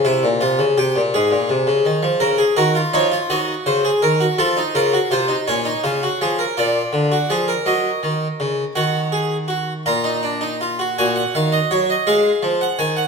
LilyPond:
<<
  \new Staff \with { instrumentName = "Harpsichord" } { \time 6/8 \key bes \minor \tempo 4. = 55 << { r2. | r8 bes'8 des''8 ees''8 c''8 r8 | a'8 bes'8 c''8 des''4. | \key ees \minor d''4. ees''4. |
ges''4. bes''4. | aes''16 ges''16 f''16 ees''16 des''16 ees''16 f''8. ges''16 aes''16 ges''16 | } \\ { e'8 f'8 g'8 aes'4. | bes'16 aes'16 ges'16 f'16 ees'16 f'16 ges'8. aes'16 bes'16 ges'16 | f'16 ees'16 f'16 ges'16 f'16 ees'16 des'16 ees'16 f'16 ges'16 aes'16 bes'16 | f'8. ges'16 aes'16 bes'4.~ bes'16 |
ges'8 aes'8 ges'8 f'16 ees'16 d'16 ees'16 f'16 ges'16 | ges'4. aes'4. | } >> }
  \new Staff \with { instrumentName = "Harpsichord" } { \clef bass \time 6/8 \key bes \minor c16 bes,16 c16 des16 c16 bes,16 aes,16 bes,16 c16 des16 ees16 f16 | des8 ees8 f8 ees8 des8 ees8 | f8 des8 c8 bes,8 des8 f8 | \key ees \minor bes,8 d8 f8 ges8 ees8 des8 |
ees4. bes,4. | bes,8 ees8 ges8 aes8 f8 ees8 | }
>>